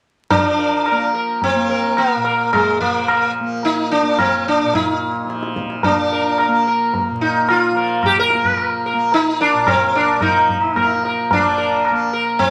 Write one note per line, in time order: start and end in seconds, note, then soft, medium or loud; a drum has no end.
0.30 2.78 F3 soft
0.30 1.10 D4 medium
0.30 tabla tin medium
0.30 tabla ge medium
0.59 0.84 A#4 soft
0.86 1.13 A#4 soft
0.86 tabla na medium
0.91 1.55 A#3 medium
1.15 1.40 A#4 soft
1.42 1.97 C4 medium
1.42 tabla tin medium
1.42 tabla ge medium
1.55 3.40 A#3 medium
1.70 1.95 A#4 soft
1.97 2.52 A#3 medium
1.97 tabla na medium
2.16 4.63 A#2 medium
2.24 2.50 A#4 soft
2.24 tabla na medium
2.53 2.78 G#3 medium
2.53 tabla na medium
2.53 tabla ge medium
2.79 5.24 F3 medium
2.79 3.32 A#3 medium
2.79 tabla ge soft
3.08 tabla na medium
3.40 4.02 A#3 medium
3.63 3.91 D#4 medium
3.63 tabla tin medium
3.91 4.19 D4 medium
4.02 5.87 A#3 soft
4.19 4.48 C4 medium
4.19 tabla na medium
4.19 tabla ge medium
4.48 4.73 D4 medium
4.64 7.09 A#2 medium
4.74 5.84 D#4 medium
4.74 tabla tin medium
4.74 tabla ge medium
5.24 7.71 F3 medium
5.30 tabla te medium
5.43 tabla te medium
5.56 tabla ke medium
5.70 tabla te medium
5.83 6.63 D4 medium
5.83 tabla tin loud
5.83 tabla ge medium
5.87 6.48 A#3 medium
6.12 6.38 A#4 soft
6.38 6.65 A#4 soft
6.38 tabla na medium
6.48 8.33 A#3 medium
6.67 6.93 A#4 soft
6.94 tabla tin medium
6.94 tabla ge medium
7.10 9.53 A#2 medium
7.21 7.50 D#4 medium
7.49 8.06 F4 medium
7.49 tabla na medium
7.71 10.15 F3 medium
7.76 8.02 A#4 soft
8.03 8.19 G4 medium
8.03 tabla na medium
8.03 tabla ge medium
8.19 8.85 A#4 medium
8.30 8.93 A#3 medium
8.30 tabla te medium
8.44 tabla ge soft
8.58 tabla na medium
8.86 9.11 A#4 soft
8.93 10.75 A#3 medium
9.12 9.42 D#4 medium
9.12 tabla tin medium
9.41 9.69 D4 medium
9.41 9.66 A#4 soft
9.53 12.50 A#2 medium
9.67 9.96 C4 medium
9.67 9.93 A#4 soft
9.67 tabla na medium
9.67 tabla ge medium
9.95 10.22 D4 medium
9.95 10.20 A#4 soft
10.15 11.31 F3 medium
10.21 11.32 D#4 medium
10.21 10.47 A#4 soft
10.21 tabla na medium
10.21 tabla ge medium
10.49 tabla ge soft
10.75 11.91 A#3 medium
10.75 11.02 A#4 soft
10.75 tabla na medium
10.75 tabla ge medium
11.03 11.30 A#4 soft
11.03 tabla te medium
11.31 12.50 F3 medium
11.31 12.09 D4 medium
11.31 tabla tin loud
11.31 tabla ge medium
11.58 11.83 A#4 soft
11.85 tabla na medium
11.91 12.50 A#3 medium
12.13 12.38 A#4 soft
12.39 12.50 C4 medium
12.39 tabla tin medium
12.39 tabla ge medium